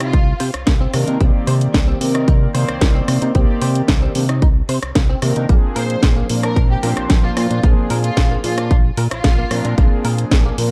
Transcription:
Already playing: C3
0.00 D#4 F4, cross-stick, closed hi-hat
0.13 C2 D#4, kick, closed hi-hat
0.40 C3 C5, open hi-hat
0.54 C2, cross-stick, closed hi-hat
0.67 C2 A#3, kick, snare, closed hi-hat
0.81 C4
0.93 C3 D#3 A#3 C4 D4 A#4, cross-stick, open hi-hat
1.08 C3 D#4, closed hi-hat
1.20 C2 D#3 A#3 C4 G4 D5, kick, closed hi-hat
1.47 C3 C5, open hi-hat
1.61 closed hi-hat
1.74 C2 A#3, kick, snare, closed hi-hat
1.88 C4
2.01 C3 D#3 A#3 C4 A#4 D5, open hi-hat
2.14 D#4, cross-stick, closed hi-hat
2.28 C2 D#4, kick, closed hi-hat
2.54 C3 D#3 A#3 C4 C5 D5, open hi-hat
2.69 C2, cross-stick, closed hi-hat
2.81 C2 A#3, kick, snare, closed hi-hat
2.95 C4
3.08 C3, cross-stick, open hi-hat
3.22 C3 D#4, closed hi-hat
3.34 C2 D#3 A#3 C4 G4 D5, kick, closed hi-hat
3.62 C3 C5, open hi-hat
3.75 closed hi-hat
3.88 C2 A#3, kick, snare, closed hi-hat
4.02 C4
4.15 C3 D#3 A#3 C4 D4 G4, open hi-hat
4.29 D#4, cross-stick, closed hi-hat
4.42 C2 D#4, kick, closed hi-hat
4.69 C3 C5, open hi-hat
4.83 C2, cross-stick, closed hi-hat
4.95 C2 A#3, kick, snare, closed hi-hat
5.09 C4
5.22 C3 D#3 A#3 C4 D4 A#4, cross-stick, open hi-hat
5.36 C3 D#4, closed hi-hat
5.48 A#1 F3 A#3 G#4, kick, closed hi-hat
5.76 A#2 A#4 C5, open hi-hat
5.90 closed hi-hat
6.03 A#1 G#3, kick, snare, closed hi-hat
6.16 A#3
6.29 A#2 F3 A#3 C4 D4 A#4, open hi-hat
6.43 D4 A#4, cross-stick, closed hi-hat
6.56 A#1 D4, kick, closed hi-hat
6.70 G4
6.82 A#2 F3 A#3 C4 D4 G4 A#4 C5, open hi-hat
6.97 A#1, cross-stick, closed hi-hat
7.10 A#1 G#3, kick, snare, closed hi-hat
7.24 A#3 F4
7.37 A#2 F4, cross-stick, open hi-hat
7.50 A#2 D4, closed hi-hat
7.63 A#1 F3 A#3 C4 D4 G#4, kick, closed hi-hat
7.90 A#2 A#4, open hi-hat
8.04 F4, closed hi-hat
8.17 A#1 G#3, kick, snare, closed hi-hat
8.31 A#3
8.43 A#2 F3 A#3 C4 D4 F4 G#4, open hi-hat
8.58 D4, cross-stick, closed hi-hat
8.71 A#1 D4, kick, closed hi-hat
8.97 A#2 A#4, open hi-hat
9.11 A#1 F4, cross-stick, closed hi-hat
9.24 A#1 G#3, kick, snare, closed hi-hat
9.38 A#3
9.51 A#2 F3 A#3 C4 D4 A#4, cross-stick, open hi-hat
9.65 A#2 D4, closed hi-hat
9.77 A#1 F3 A#3 C4 D4 G#4, kick, closed hi-hat
10.05 A#2 A#4, open hi-hat
10.18 closed hi-hat
10.31 A#1 G#3, kick, snare, closed hi-hat
10.45 A#3
10.58 A#2 F3 A#3 C4 D4 A#4, open hi-hat

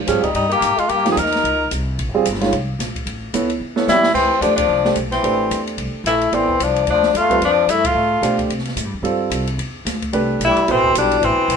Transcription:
0.05 G#2 F3 G3 C4 C#4 F4 G#4, hi-hat pedal, ride
0.23 G3 D#4, muted upright bass stroke, kick, ride
0.33 G2 G3 D#4, ride
0.49 A#3 G4, ride
0.61 G#2, hi-hat pedal, ride
0.77 G#3 F4, muted upright bass stroke, ride
0.89 G2 A#3 G4, ride
1.05 F3 A#3 D#4 G4, snare, ride
1.10 C4 G#4
1.16 D#2 D#4 A#4, hi-hat pedal, ride
1.26 snare
1.32 snare, ride
1.44 C#2, ride
1.71 C2, hi-hat pedal, ride
1.99 A#1, ride
2.08 G1
2.14 F1 G3 C4 F4 G#4
2.25 G1, hi-hat pedal, ride
2.34 snare
2.40 D#3 G#3 C#4 F4, snare, ride
2.52 C2, ride
2.79 A#1, snare, hi-hat pedal, ride
2.96 kick, ride
3.06 A1, ride
3.33 C#2 B3 E4 A4 C#5, hi-hat pedal, ride
3.50 ride
3.60 E2
3.76 B3 E4 A4 C#5, snare
3.87 F2 G3 E4, snare, hi-hat pedal
4.03 snare
4.14 D2 E3 C4, kick, crash
4.39 E2 F3 A3 D4 G4, hi-hat pedal, ride
4.43 C5
4.56 F3 D4, kick, ride
4.69 C2
4.85 A3 D4 G4 C5, snare
4.96 B1, hi-hat pedal, ride
5.11 E3 C4, snare, ride
5.23 A1 A3 D4 G4 C5, ride
5.51 E2, hi-hat pedal, ride
5.67 ride
5.78 C2, ride
5.93 muted upright bass stroke
6.04 A#1 A3 E4, hi-hat pedal, ride
6.21 ride
6.32 A1 E3 B3 C4 E4 A4 D5, ride
6.49 kick
6.59 C2 F3 D4, hi-hat pedal, ride
6.76 ride
6.87 D2 F3 D4, ride
7.03 snare
7.14 E2 A3 F4, hi-hat pedal, ride
7.30 G3 C4 F4 B4, kick, ride
7.41 F2 F3 D4, ride
7.67 G2 A3 E4, hi-hat pedal, ride
7.85 A3 F4, kick, ride
7.94 A2
8.22 B2 A3 D4 G4 C5, hi-hat pedal, ride
8.39 kick, ride
8.49 C3, ride
8.59 snare
8.65 snare, ride
8.76 A2, hi-hat pedal, ride
8.85 G2
8.94 E2
9.02 G2 G3 C4 F4 A4, ride
9.30 C2, hi-hat pedal, ride
9.47 ride
9.58 E2, ride
9.85 D2, snare, hi-hat pedal, ride
10.02 kick, ride
10.13 C2 A3 D4 G4 B4, ride
10.40 B1, hi-hat pedal, ride
10.44 G3 E4
10.57 ride
10.68 A1 B2 E3 C4 E4 A4 C5, ride
10.84 kick
10.95 B1 G3 D4, hi-hat pedal, ride
11.12 ride
11.22 A1 E3 C4, ride
11.37 muted upright bass stroke
11.48 B1, hi-hat pedal, ride

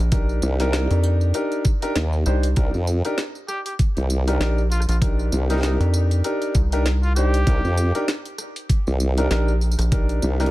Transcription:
0.00 A#1
0.12 D4 D#4 G4 A#4, kick, closed hi-hat, tambourine
0.29 tambourine
0.42 C2, tambourine
0.60 D4 D#4 G4 A#4, snare, closed hi-hat, tambourine
0.73 snare, closed hi-hat, tambourine
0.91 F2, closed hi-hat, tambourine
1.03 tambourine
1.21 tambourine
1.34 D4 D#4 G4 A#4, closed hi-hat, tambourine
1.52 closed hi-hat, tambourine
1.65 kick, tambourine
1.82 D4 D#4 G4 A#4, closed hi-hat, tambourine
1.96 D#2, snare, closed hi-hat, tambourine
2.13 tambourine
2.26 C2 D4 D#4 G4 C5, tambourine
2.43 closed hi-hat, tambourine
2.56 C2 D4 D#4 G4 A#4, kick, closed hi-hat, tambourine
2.74 F2, tambourine
2.87 tambourine
3.05 D4 D#4 G4 A#4, closed hi-hat, tambourine
3.18 snare, closed hi-hat, tambourine
3.35 tambourine
3.48 G4, cross-stick, tambourine
3.66 G4, closed hi-hat, tambourine
3.79 kick, closed hi-hat, tambourine
3.97 C2, closed hi-hat, tambourine
4.10 tambourine
4.28 D4 D#4 G4 A#4, closed hi-hat, tambourine
4.40 A#1 D4 D#4 G4 A#4, snare, tambourine
4.58 tambourine
4.71 F4, tambourine
4.80 cross-stick, tambourine
4.88 A#1 F4, closed hi-hat, tambourine
4.92 tambourine
5.02 D4 D#4 G4 A#4, kick, closed hi-hat, tambourine
5.19 tambourine
5.32 C2, tambourine
5.49 D4 D#4 G4 A#4, snare, closed hi-hat, tambourine
5.52 snare
5.56 snare
5.59 snare
5.61 D#4, snare
5.63 snare, closed hi-hat, tambourine
5.80 F2, closed hi-hat, tambourine
5.94 tambourine
6.11 closed hi-hat, tambourine
6.24 D4 D#4 G4 A#4, closed hi-hat, tambourine
6.42 closed hi-hat, tambourine
6.55 C2, kick, tambourine
6.72 D4 D#4 G4 A#4, closed hi-hat, tambourine
6.86 snare, closed hi-hat, tambourine
7.03 F4, tambourine
7.16 D4 D#4 G4 C5, tambourine
7.34 closed hi-hat, tambourine
7.47 C2 D4 D#4 G4 A#4, kick, closed hi-hat, tambourine
7.64 F2, tambourine
7.77 tambourine
7.95 D4 D#4 G4 A#4, closed hi-hat, tambourine
8.08 snare, closed hi-hat, tambourine
8.25 closed hi-hat, tambourine
8.38 cross-stick, tambourine
8.56 closed hi-hat, tambourine
8.69 kick, closed hi-hat, tambourine
8.87 C2, tambourine
9.00 tambourine
9.18 D4 D#4 G4 A#4, closed hi-hat, tambourine
9.31 A#1 D4 D#4 G4 A#4, snare, closed hi-hat, tambourine
9.48 tambourine
9.61 tambourine
9.71 tambourine
9.79 A#1, cross-stick, closed hi-hat, tambourine
9.81 tambourine
9.92 D4 D#4 G4 A#4, kick, closed hi-hat, tambourine
10.09 closed hi-hat, tambourine
10.22 C2, tambourine
10.40 D4 D#4 G4 A#4, snare, closed hi-hat, tambourine
10.46 closed hi-hat

